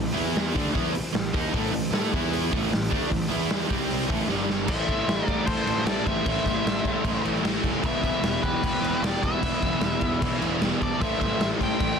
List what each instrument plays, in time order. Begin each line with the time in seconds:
Already playing: picked electric bass A1, overdriven electric guitar A2 E3, analog synth pad E4 C5 A5
0.13 picked electric bass E2, overdriven electric guitar E3 B3 E4, analog synth pad B4 B5, open hi-hat
0.37 snare, open hi-hat
0.54 picked electric bass D2, overdriven electric guitar D3 A3 D4, analog synth pad E4 C5 A5, kick, open hi-hat
0.74 picked electric bass E2, overdriven electric guitar E3 B3 E4, kick, open hi-hat
0.94 muted distorted electric guitar stroke, muted picked electric bass stroke, muted overdriven electric guitar stroke, open hi-hat
1.14 picked electric bass A1, overdriven electric guitar A2 E3, snare, open hi-hat
1.34 picked electric bass D#2, overdriven electric guitar D#3 A#3 D#4, kick, open hi-hat
1.53 picked electric bass A1, overdriven electric guitar A2 E3 A3, kick, open hi-hat
1.73 picked electric bass A1, overdriven electric guitar A2 E3, open hi-hat
1.91 picked electric bass A2, overdriven electric guitar A3 E4 A4, snare, open hi-hat
2.11 picked electric bass E2, overdriven electric guitar E3 B3 E4, analog synth pad B4 B5, kick, open hi-hat
2.33 open hi-hat
2.52 picked electric bass A1, overdriven electric guitar A2 E3 A3, analog synth pad C5 A5, kick, open hi-hat
2.71 picked electric bass A1, overdriven electric guitar A2 E3, snare, open hi-hat
2.90 picked electric bass D2, overdriven electric guitar D3 A3 D4, kick, open hi-hat
3.09 picked electric bass A1, overdriven electric guitar A2 E3, kick, open hi-hat
3.28 picked electric bass E2, overdriven electric guitar E3 B3 E4, analog synth pad E4 B4 B5, open hi-hat
3.51 snare, open hi-hat
3.67 picked electric bass C2, overdriven electric guitar C3 G3 C4, analog synth pad G4 C5 C6, kick, open hi-hat
3.91 open hi-hat
4.06 overdriven electric guitar A2 E3 A3, analog synth pad E4 A5
4.10 picked electric bass A1, kick, open hi-hat
4.27 picked electric bass G1, overdriven electric guitar G2 D3 G3, analog synth pad D4 G4 G5, snare
4.50 snare
4.67 picked electric bass A1, overdriven electric guitar A2 E3 A3, analog synth pad A3 E4 C5, lead electric guitar C5 E5, kick, crash
4.89 picked electric bass A1, kick, crash
5.08 picked electric bass A1, snare, crash
5.22 lead electric guitar A#4
5.26 picked electric bass A1, overdriven electric guitar A2 E3 A3, lead electric guitar D5, kick, crash
5.46 picked electric bass A1, distorted electric guitar A2 E3 A3, lead electric guitar A4 C5, kick, crash
5.64 picked electric bass A1, overdriven electric guitar A2 E3 A3, crash
5.78 snare
5.85 picked electric bass A1, overdriven electric guitar A2 E3 A3, lead electric guitar A4 D5, snare, crash
6.06 picked electric bass A1, lead electric guitar C5 E5, kick, crash
6.25 picked electric bass A1, overdriven electric guitar A2 E3 A3, kick, crash
6.46 picked electric bass A1, kick, snare, crash
6.66 picked electric bass A1, snare, crash
6.83 picked electric bass A2, overdriven electric guitar A2 E3 A3, kick, crash
7.02 picked electric bass A1, distorted electric guitar A2 E3 A3, kick, crash
7.22 picked electric bass A1, overdriven electric guitar A2 E3 A3, crash
7.34 snare
7.42 picked electric bass A1, overdriven electric guitar A2 E3 A3, snare, crash
7.63 picked electric bass F1, kick, crash
7.82 picked electric bass E1, overdriven electric guitar E2 B2 E3, analog synth pad E3 B3, kick, crash
7.86 lead electric guitar B4 E5
8.03 picked electric bass E1, kick, crash
8.23 picked electric bass E1, snare, crash
8.42 picked electric bass E1, overdriven electric guitar E2 B2 E3, lead electric guitar G4 B4, kick, crash
8.62 picked electric bass E1, distorted electric guitar E2 B2 E3, kick, crash
8.81 picked electric bass E1, overdriven electric guitar E2 B2 E3, crash
9.02 picked electric bass E1, overdriven electric guitar E2 B2 E3, lead electric guitar G4 D5, snare, crash
9.23 picked electric bass E1, lead electric guitar B4 E5, kick, crash
9.42 picked electric bass E1, overdriven electric guitar E2 B2 E3, kick, crash
9.62 picked electric bass E1, kick, crash
9.81 picked electric bass E1, snare, crash
10.01 picked electric bass E2, overdriven electric guitar E2 B2 E3, kick, crash
10.21 picked electric bass E1, distorted electric guitar E2 B2 E3, kick, crash
10.39 picked electric bass E1, overdriven electric guitar B2 E3, crash
10.44 overdriven electric guitar E2
10.60 picked electric bass E1, overdriven electric guitar E2 B2 E3, snare, crash
10.81 picked electric bass E1, lead electric guitar A4 D5, kick, crash
11.00 picked electric bass A1, overdriven electric guitar A2 E3 A3, analog synth pad A3 C5, lead electric guitar C5 E5, kick, crash
11.20 picked electric bass A1, lead electric guitar C5 E5, kick, snare, crash
11.40 picked electric bass A1, lead electric guitar C5 E5, snare, crash
11.59 picked electric bass A1, overdriven electric guitar A2 E3 A3, lead electric guitar C5, kick, crash
11.63 lead electric guitar G5
11.79 picked electric bass A1, distorted electric guitar A2 E3 A3, kick, crash